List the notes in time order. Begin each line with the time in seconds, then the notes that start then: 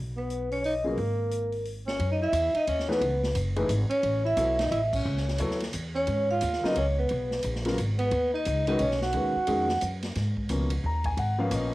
Already playing: B1
0.16 B3 B4
0.30 closed hi-hat
0.51 C#4 C#5, open hi-hat
0.64 D#4 D#5, open hi-hat
0.84 C#3 F#3 A#3 B3 F4 G#4 A#4
0.97 G#1, open hi-hat
1.31 closed hi-hat
1.52 open hi-hat
1.65 open hi-hat
1.87 C#4 C#5, snare
1.99 F#2, ride
2.12 D#4 D#5
2.22 E4 E5
2.32 E2, hi-hat pedal, ride
2.55 D#4 D#5, muted upright bass stroke, ride
2.67 D#2 C#4 C#5, ride
2.79 snare
2.88 E3 A3 B3 D#4 G#4 B4, snare
3.01 C#2, ride
3.23 snare
3.35 F#1, hi-hat pedal, ride
3.56 E3 A3 D#4 G#4 B4, ride
3.69 G#1, hi-hat pedal, ride
3.90 C#4 C#5, ride
4.03 A1, ride
4.25 E4 E5
4.37 B1 F#3 B3 E4 A4 C#5, hi-hat pedal, ride
4.59 D#4 D#5, snare, ride
4.71 A1 E4 E5, ride
4.93 C#4 C#5, kick, crash
5.05 C#2
5.17 snare
5.28 snare
5.38 D#2 F#3 B3 E4 A4 C#5, hi-hat pedal, ride
5.51 snare
5.60 snare, ride
5.73 E2, hi-hat pedal, ride
5.95 C#4 C#5
6.07 G#2, ride
6.31 F4 F5
6.41 D#2, hi-hat pedal, ride
6.53 snare
6.63 C#3 F#3 B3 D#4 F4 A#4 D#5, muted upright bass stroke, snare
6.75 C#2 C#4 C#5, ride
6.99 B3 B4
7.09 B1, ride
7.31 snare
7.43 A#1, hi-hat pedal, ride
7.55 snare
7.65 C#3 F#3 B3 F4 A#4, snare, ride
7.78 G#1, hi-hat pedal, ride
7.99 B3 B4, ride
8.11 D#2, ride
8.34 D#4 D#5
8.45 C#2, hi-hat pedal, ride
8.67 D#3 G#3 C#4 D#4 F#4 B4 D#5, ride
8.79 B1 C#4 C#5, ride
8.91 snare
9.02 F#4 F#5, snare
9.13 D#2 D#3 G#3 C#4 F#4 B4, ride
9.36 muted upright bass stroke
9.47 F2 D#3 G#3 C#4 F#4 G#4, ride
9.69 snare
9.81 F#2, hi-hat pedal, ride
10.03 snare, ride
10.15 G#2, snare, ride
10.37 kick
10.49 C#2 B2 F3 A#3 C#4, hi-hat pedal, ride
10.70 ride
10.84 D#2 A#5
11.04 G#5, kick, ride
11.17 G#1 F#5, ride
11.38 F3 A#3 B3 C#4 F5
11.51 A#1 D#5, hi-hat pedal, ride